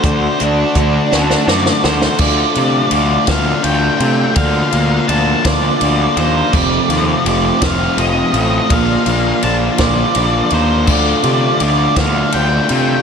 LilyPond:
<<
  \new Staff \with { instrumentName = "Lead electric guitar" } { \time 6/8 \key d \phrygian \tempo 4. = 55 << { r4. d''4 c''8 | d''4 d''8 f''8 g''4 | f''4 a''8 d''4 c''8 | d''4 d''8 f''8 ees''4 |
f''4 a''8 d''4 c''8 | d''4 d''8 f''8 g''4 | } \\ { c''8 d'8 d'4 r4 | r2. | r2. | r2. |
r2. | r2. | } >> }
  \new Staff \with { instrumentName = "Distorted electric guitar" } { \time 6/8 \key d \phrygian <d a d' fis'>8 d8 d'8 a8 fis'8 d'8 | d8 a8 d'8 f'8 d'8 a8 | d8 bes8 d'8 f'8 d'8 bes8 | f,8 a8 c'8 f'8 c'8 a8 |
bes,8 bes8 d'8 f'8 d'8 bes8 | d8 a8 d'8 f'8 d'8 a8 | }
  \new Staff \with { instrumentName = "Overdriven electric guitar" } { \time 6/8 \key d \phrygian <d a d' fis'>8 <a d' fis'>4 <d a d' fis'>8 <d a d' fis'>8 <a d' fis'>8 | <d a d' f'>8 <a d' f'>8 <d a d' f'>8 <a d' f'>8 <d a d' f'>8 <a d' f'>8 | <d bes d' f'>8 <bes d' f'>8 <d bes d' f'>8 <bes d' f'>8 <d bes d' f'>8 <bes d' f'>8 | <f, c f a c' f'>8 <f a c' f'>8 <f a c' f'>8 <f a c' f'>8 <f a c' f'>8 <f a c' f'>8 |
<bes, d bes d' f'>8 <bes d' f'>8 <d bes d' f'>8 <bes d' f'>8 <d bes d' f'>8 <bes d' f'>8 | <d a d' f'>8 <a d' f'>8 <d a d' f'>8 <a d' f'>8 <d a d' f'>8 <a d' f'>8 | }
  \new Staff \with { instrumentName = "Picked electric bass" } { \clef bass \time 6/8 \key d \phrygian d,8 d,8 d,8 d,8 fis,8 d,8 | d,8 c8 d,8 d,8 d,8 c8 | d,8 d,8 d,8 d,8 d,8 ees,8 | f,,8 ees,8 f,,8 f,,8 f,,8 a,,8 |
bes,,8 bes,,8 bes,,8 bes,,8 bes,,8 ees,8 | d,8 c8 d,8 d,8 d,8 c8 | }
  \new DrumStaff \with { instrumentName = "Drums" } \drummode { \time 6/8 <hh bd>8 hh8 <hh bd>8 sn16 sn16 sn16 sn16 sn16 sn16 | <cymc bd>8 cymr8 cymr8 <bd cymr sn>8 cymr8 cymr8 | <bd cymr>8 cymr8 cymr8 <bd cymr sn>8 cymr8 cymr8 | <cymc bd>8 cymr8 cymr8 <bd cymr sn>8 cymr8 cymr8 |
<bd cymr>8 cymr8 cymr8 <bd cymr sn>8 cymr8 cymr8 | <cymc bd>8 cymr8 cymr8 <bd cymr sn>8 cymr8 cymr8 | }
>>